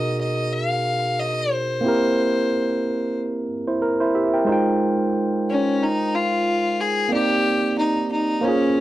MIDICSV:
0, 0, Header, 1, 3, 480
1, 0, Start_track
1, 0, Tempo, 659341
1, 1337, Time_signature, 4, 2, 24, 8
1, 6409, End_track
2, 0, Start_track
2, 0, Title_t, "Fiddle"
2, 0, Program_c, 0, 110
2, 0, Note_on_c, 0, 75, 88
2, 144, Note_off_c, 0, 75, 0
2, 148, Note_on_c, 0, 75, 87
2, 384, Note_on_c, 0, 77, 93
2, 395, Note_off_c, 0, 75, 0
2, 865, Note_on_c, 0, 75, 91
2, 876, Note_off_c, 0, 77, 0
2, 1108, Note_on_c, 0, 72, 84
2, 1119, Note_off_c, 0, 75, 0
2, 2303, Note_off_c, 0, 72, 0
2, 4003, Note_on_c, 0, 61, 80
2, 4242, Note_on_c, 0, 63, 88
2, 4253, Note_off_c, 0, 61, 0
2, 4476, Note_on_c, 0, 65, 94
2, 4487, Note_off_c, 0, 63, 0
2, 4955, Note_on_c, 0, 68, 86
2, 4966, Note_off_c, 0, 65, 0
2, 5186, Note_off_c, 0, 68, 0
2, 5192, Note_on_c, 0, 67, 100
2, 5636, Note_off_c, 0, 67, 0
2, 5665, Note_on_c, 0, 63, 80
2, 5885, Note_off_c, 0, 63, 0
2, 5905, Note_on_c, 0, 63, 83
2, 6144, Note_on_c, 0, 61, 80
2, 6155, Note_off_c, 0, 63, 0
2, 6409, Note_off_c, 0, 61, 0
2, 6409, End_track
3, 0, Start_track
3, 0, Title_t, "Tine electric piano"
3, 0, Program_c, 1, 4
3, 0, Control_c, 1, 64, 127
3, 0, Note_on_c, 1, 47, 62
3, 0, Note_on_c, 1, 63, 57
3, 0, Note_on_c, 1, 66, 60
3, 0, Note_on_c, 1, 68, 57
3, 0, Note_on_c, 1, 70, 65
3, 1300, Note_off_c, 1, 47, 0
3, 1307, Note_off_c, 1, 63, 0
3, 1313, Note_off_c, 1, 66, 0
3, 1317, Note_on_c, 1, 58, 61
3, 1320, Note_off_c, 1, 68, 0
3, 1327, Note_off_c, 1, 70, 0
3, 1330, Note_on_c, 1, 60, 57
3, 1344, Note_on_c, 1, 64, 54
3, 1347, Control_c, 1, 64, 0
3, 1357, Note_on_c, 1, 67, 55
3, 1370, Note_on_c, 1, 70, 73
3, 1495, Control_c, 1, 64, 127
3, 2517, Note_off_c, 1, 64, 0
3, 2523, Note_off_c, 1, 67, 0
3, 2530, Note_off_c, 1, 70, 0
3, 2676, Note_on_c, 1, 72, 61
3, 2680, Note_on_c, 1, 64, 50
3, 2775, Note_off_c, 1, 72, 0
3, 2777, Note_off_c, 1, 64, 0
3, 2782, Note_on_c, 1, 70, 65
3, 2906, Note_off_c, 1, 70, 0
3, 2914, Note_on_c, 1, 72, 67
3, 2919, Note_on_c, 1, 64, 61
3, 3014, Note_off_c, 1, 72, 0
3, 3017, Note_off_c, 1, 64, 0
3, 3021, Note_on_c, 1, 76, 65
3, 3025, Note_on_c, 1, 67, 51
3, 3145, Note_off_c, 1, 76, 0
3, 3147, Note_off_c, 1, 67, 0
3, 3156, Note_on_c, 1, 79, 59
3, 3163, Note_on_c, 1, 70, 50
3, 3218, Note_off_c, 1, 58, 0
3, 3225, Note_off_c, 1, 60, 0
3, 3238, Note_on_c, 1, 56, 74
3, 3255, Note_on_c, 1, 72, 65
3, 3266, Note_on_c, 1, 63, 66
3, 3267, Control_c, 1, 64, 0
3, 3280, Note_on_c, 1, 65, 65
3, 3284, Note_off_c, 1, 79, 0
3, 3293, Note_on_c, 1, 79, 79
3, 3376, Control_c, 1, 64, 127
3, 3384, Note_off_c, 1, 70, 0
3, 5139, Note_off_c, 1, 56, 0
3, 5147, Note_off_c, 1, 72, 0
3, 5153, Note_off_c, 1, 63, 0
3, 5159, Note_off_c, 1, 65, 0
3, 5160, Note_on_c, 1, 58, 63
3, 5166, Note_off_c, 1, 79, 0
3, 5175, Note_on_c, 1, 60, 56
3, 5186, Control_c, 1, 64, 0
3, 5187, Note_on_c, 1, 74, 60
3, 5202, Note_on_c, 1, 63, 56
3, 5215, Note_on_c, 1, 67, 65
3, 5312, Control_c, 1, 64, 127
3, 6110, Note_off_c, 1, 58, 0
3, 6117, Note_off_c, 1, 60, 0
3, 6122, Note_on_c, 1, 58, 61
3, 6123, Note_off_c, 1, 74, 0
3, 6131, Note_off_c, 1, 63, 0
3, 6134, Note_on_c, 1, 72, 58
3, 6137, Note_off_c, 1, 67, 0
3, 6147, Control_c, 1, 64, 0
3, 6149, Note_on_c, 1, 61, 56
3, 6162, Note_on_c, 1, 65, 58
3, 6176, Note_on_c, 1, 68, 71
3, 6273, Control_c, 1, 64, 127
3, 6409, Note_off_c, 1, 58, 0
3, 6409, Note_off_c, 1, 61, 0
3, 6409, Note_off_c, 1, 65, 0
3, 6409, Note_off_c, 1, 68, 0
3, 6409, Note_off_c, 1, 72, 0
3, 6409, End_track
0, 0, End_of_file